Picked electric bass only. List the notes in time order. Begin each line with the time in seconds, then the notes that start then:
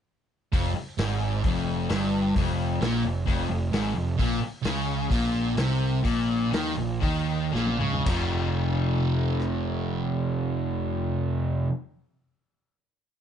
0.53 F1
0.77 muted picked electric bass stroke
0.98 G#1
1.44 F1
1.90 G1
2.35 F1
2.81 A#1
3.04 F1
3.27 F1
3.50 F1
3.73 G#1
3.96 F1
4.19 A#1
4.42 muted picked electric bass stroke
4.65 C#2
5.11 A#1
5.57 C2
6.05 A#1
6.54 D#2
6.78 A#1
7.02 D#2
7.54 A#1
7.81 C#2
8.06 F1